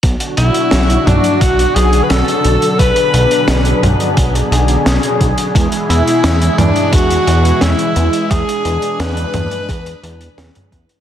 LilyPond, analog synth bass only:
\new Staff \with { instrumentName = "Analog synth bass" } { \clef bass \time 4/4 \key b \dorian \tempo 4 = 87 b,,8 b,,8 b,,8 b,,8 b,,8 b,,8 b,,8 b,,8 | b,,8 b,,8 b,,8 b,,8 b,,8 b,,8 b,,8 b,,8 | e,8 e,8 e,8 e,8 e,8 e,8 e,8 e,8 | e,8 e,8 e,8 e,8 e,8 e,8 e,8 e,8 | }